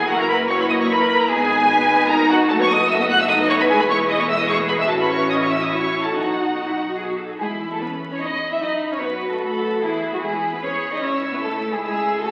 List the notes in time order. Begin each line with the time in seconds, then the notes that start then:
0.09 F#1 A#3 E4 F#4 A#4 F#5
0.20 A#4 A#5
0.29 B4 B5
0.49 A#3 E4 F#4 C#5 C#6
0.60 B4 B5
0.69 D#5 D#6
0.81 C#5 C#6
0.90 A#4 B4 B5
1.20 A#4 A#5
1.30 G#1 B3 D#4 G#4 G#5
1.70 B4
2.10 D#4 A#4 A#5
2.29 F#4 F#5
2.49 F#1 A3 F#4 A4 A5
2.59 B3 B4 C#5 C#6
2.69 A3 A4 D#5 D#6
2.79 B3 B4
2.89 A3 A4 E5 E6
2.99 B3 B4 D#5 D#6
3.09 A3 A4 F#5 F#6
3.19 B3 B4 E5 E6
3.28 A3 D#4 A4 D#5 D#6
3.40 B3 B4
3.49 A3 A4 C#5 C#6
3.59 B3 B4 B5
3.69 E1 G#3 E4 G#4 G#5
3.79 B3 B4 B5
3.89 G#3 G#4 C#5 C#6
3.99 B3 B4
4.09 G#3 G#4 D#5 D#6
4.19 B3 B4 C#5 C#6
4.29 G#3 G#4 E5 E6
4.38 B3 B4 D#5 D#6
4.49 G#3 G#4 C#5 C#6
4.59 B3 B4
4.68 G#3 G#4 B4 B5
4.79 B3 B4 E5 E6
4.89 A1 C#4 F#4 A4 A5
4.99 B4 B5
5.09 C#5 C#6
5.30 E4 D#5 D#6
5.40 C#5 C#6
5.50 E5 E6
5.61 D#5 D#6
5.71 C#4 F#4 C#5 C#6
6.03 A4 A5
6.13 B1 D#4 F#4 F#5
6.56 D#4
6.67 E4
6.77 F#4
6.98 G#4
7.09 F#4
7.19 A4
7.30 G#4
7.40 E2 G#3 E4 G#4 B5
7.71 A3 A4
7.81 B3 C#4 B4 B5
8.11 C#4 C#5
8.21 B3 D#4 D#5
8.52 E4 E5
8.61 F#2 D#4 D#5 B5
8.92 C#4 C#5
9.02 B3 F#4 B4 B5
9.32 A3 A4
9.42 A3 A4 B5
9.82 E2 E3 E4 G#4 B5
10.13 F#3 F#4
10.23 G#3 E4 G#4 B5
10.53 B3 B4
10.62 C#4 G#4 C#5
10.92 D#4 D#5
11.02 C#2 C#4 E4 C#5 E6
11.32 B3 B4
11.42 A3 A4
11.71 G#3 G#4
11.81 G#3 G#4 E6
12.21 F#1 A3 F#4 A4 E6